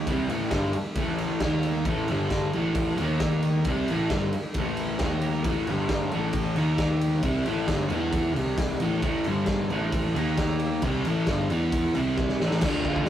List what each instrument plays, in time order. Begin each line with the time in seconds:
0.07 picked electric bass C2, overdriven electric guitar C3 G3 C4, kick, ride
0.29 picked electric bass A1, overdriven electric guitar A2 E3 A3, ride
0.51 picked electric bass G1, overdriven electric guitar G2 D3 G3, kick, snare, ride
0.73 muted picked electric bass stroke, muted overdriven electric guitar stroke, ride
0.95 picked electric bass A1, overdriven electric guitar A2 E3 A3, kick, ride
1.18 ride
1.40 picked electric bass D#2, overdriven electric guitar D#3 A#3, kick, snare, ride
1.44 overdriven electric guitar D#4
1.63 ride
1.85 picked electric bass A1, overdriven electric guitar A2 E3 A3, kick, ride
2.08 picked electric bass G1, overdriven electric guitar G2 D3 G3, ride
2.30 kick, snare, ride
2.53 picked electric bass A1, overdriven electric guitar A2 E3 A3, ride
2.75 kick, ride
2.98 picked electric bass D#2, overdriven electric guitar D#3 A#3, ride
3.02 overdriven electric guitar D#4
3.20 kick, snare, ride
3.42 ride
3.65 picked electric bass C2, overdriven electric guitar C3 G3, kick, ride
3.69 overdriven electric guitar C4
3.88 picked electric bass A1, overdriven electric guitar A2, ride
3.92 overdriven electric guitar E3 A3
4.10 picked electric bass G1, overdriven electric guitar G2 D3 G3, kick, snare, ride
4.32 muted picked electric bass stroke, muted overdriven electric guitar stroke, ride
4.54 picked electric bass A1, overdriven electric guitar A2, kick, ride
4.58 overdriven electric guitar E3 A3
4.77 ride
4.99 picked electric bass D#2, overdriven electric guitar D#3 A#3, kick, snare, ride
5.04 overdriven electric guitar D#4
5.21 ride
5.44 picked electric bass A1, overdriven electric guitar A2 E3 A3, kick, ride
5.67 picked electric bass G1, overdriven electric guitar G2 D3 G3, ride
5.89 kick, snare, ride
6.12 picked electric bass A1, overdriven electric guitar A2 E3 A3, ride
6.33 kick, ride
6.56 picked electric bass D#2, overdriven electric guitar D#3 A#3 D#4, ride
6.78 kick, snare, ride
7.01 ride
7.22 picked electric bass C2, overdriven electric guitar C3 G3 C4, kick, ride
7.46 picked electric bass A1, overdriven electric guitar A2 E3 A3, ride
7.68 picked electric bass G1, overdriven electric guitar G2 D3, kick, snare, ride
7.72 overdriven electric guitar G3
7.90 picked electric bass E2, overdriven electric guitar E3 B3 E4, ride
8.13 kick, ride
8.36 picked electric bass C2, overdriven electric guitar C3 G3 C4, ride
8.58 kick, snare, ride
8.79 picked electric bass A1, overdriven electric guitar A2 E3, ride
8.84 overdriven electric guitar A3
9.02 picked electric bass A1, overdriven electric guitar A2 E3 A3, kick, ride
9.24 picked electric bass G1, overdriven electric guitar G2 D3, ride
9.28 overdriven electric guitar G3
9.46 kick, snare, ride
9.69 picked electric bass A1, overdriven electric guitar A2 E3 A3, ride
9.92 kick, ride
10.15 picked electric bass D#2, overdriven electric guitar D#3 A#3 D#4, ride
10.38 kick, snare, ride
10.59 ride
10.82 picked electric bass C2, overdriven electric guitar C3 G3 C4, kick, ride
11.05 picked electric bass A1, overdriven electric guitar A2 E3 A3, ride
11.27 picked electric bass G1, overdriven electric guitar G2 D3 G3, kick, snare, ride
11.49 picked electric bass E2, overdriven electric guitar E3 B3 E4, ride
11.72 kick, ride
11.95 picked electric bass C2, overdriven electric guitar C3 G3 C4, ride
12.17 kick, snare
12.29 snare
12.39 picked electric bass A1, overdriven electric guitar A2 E3 A3, snare
12.51 snare
12.61 picked electric bass D2, overdriven electric guitar D3, kick, snare, crash
12.65 overdriven electric guitar A3 D4 F4
12.84 picked electric bass D2, overdriven electric guitar F4, kick
12.90 overdriven electric guitar A3 D4
12.96 kick